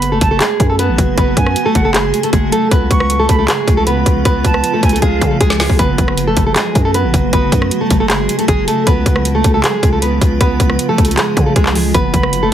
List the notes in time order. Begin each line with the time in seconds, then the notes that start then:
Already playing: F#1 C#3 F#3 A3 F#4 B5
0.02 closed hi-hat
0.12 A3 A4
0.21 F#1 A5, kick, closed hi-hat
0.31 A3 A4
0.40 G#3 G#4, clap, closed hi-hat
0.60 F#2, kick, closed hi-hat
0.70 A3 A4
0.79 B3 B4, closed hi-hat
0.89 A1
0.98 F#1, kick, closed hi-hat
1.18 F#1 B3 B4, kick, closed hi-hat
1.37 F#2 G#5, kick, closed hi-hat
1.46 cross-stick
1.56 closed hi-hat
1.66 A3 A4
1.75 F#1 F#5, kick, closed hi-hat
1.85 A3 A4
1.94 G#3 G#4, clap, closed hi-hat
2.14 closed hi-hat
2.23 A3 A4, closed hi-hat
2.33 F#1 G#3 G#4, kick, closed hi-hat
2.52 A3 A4, closed hi-hat
2.71 C#2 F3 G#3 B3 F4 B4, kick, closed hi-hat
2.91 C#2 C#6, kick, closed hi-hat
3.00 cross-stick
3.10 closed hi-hat
3.19 A3 A4
3.29 C#2 B5, kick, closed hi-hat
3.39 A3 A4
3.48 G#3 G#4, clap, closed hi-hat
3.68 C#2, kick, closed hi-hat
3.77 A3 A4
3.87 B3 B4, closed hi-hat
4.06 C#2, kick, closed hi-hat
4.25 C#2 B3 B4, kick, closed hi-hat
4.44 C#2 A5, kick, closed hi-hat
4.54 cross-stick
4.64 closed hi-hat
4.74 A3 A4
4.83 C#2 G#5, kick, closed hi-hat
4.89 A4, closed hi-hat
4.94 A3, closed hi-hat
5.02 C#2 G#3 G#4 F5, kick, closed hi-hat
5.21 C#3, kick, closed hi-hat
5.31 A3 A4
5.41 C#2 G#3 G#4, kick, closed hi-hat
5.50 snare
5.60 G#3 G#4, snare, open hi-hat
5.70 C#2, kick
5.79 F#1 C#3 F#3 A3 B3 F#4 B4, kick, closed hi-hat
5.98 F#1, kick, closed hi-hat
6.08 cross-stick
6.18 closed hi-hat
6.27 A3 A4
6.37 F#1, kick, closed hi-hat
6.47 A3 A4
6.56 G#3 G#4, clap, closed hi-hat
6.75 F#2, kick, closed hi-hat
6.85 A3 A4
6.94 B3 B4, closed hi-hat
7.04 A1
7.14 F#1, kick, closed hi-hat
7.33 F#1 B3 B4, kick, closed hi-hat
7.52 F#2, kick, closed hi-hat
7.62 cross-stick
7.71 closed hi-hat
7.81 A3 A4
7.90 F#1, kick, closed hi-hat
8.00 A3 A4
8.09 G#3 G#4, clap, closed hi-hat
8.29 closed hi-hat
8.39 A3 A4, closed hi-hat
8.48 F#1 G#3 G#4, kick, closed hi-hat
8.68 A3 A4, closed hi-hat
8.87 C#2 F3 G#3 B3 F4 B4, kick, closed hi-hat
9.06 C#2, kick, closed hi-hat
9.16 cross-stick
9.25 closed hi-hat
9.35 A3 A4
9.44 C#2, kick, closed hi-hat
9.54 A3 A4
9.64 G#3 G#4, clap, closed hi-hat
9.83 C#2, kick, closed hi-hat
9.93 A3 A4
10.02 B3 B4, closed hi-hat
10.21 C#2, kick, closed hi-hat
10.41 C#2 B3 B4, kick, closed hi-hat
10.60 C#2, kick, closed hi-hat
10.70 cross-stick
10.79 closed hi-hat
10.89 A3 A4
10.98 C#2, kick, closed hi-hat
11.05 A4, closed hi-hat
11.09 A3, closed hi-hat
11.17 G#3 G#4, clap, closed hi-hat
11.37 C#3, kick, closed hi-hat
11.46 A3 A4
11.56 C#2 G#3 G#4, kick, closed hi-hat
11.66 clap
11.75 G#3 G#4, open hi-hat
11.94 F#1 B3 B4, kick, closed hi-hat
12.13 F#1 B5, kick, closed hi-hat
12.23 cross-stick
12.33 closed hi-hat
12.43 A3 A4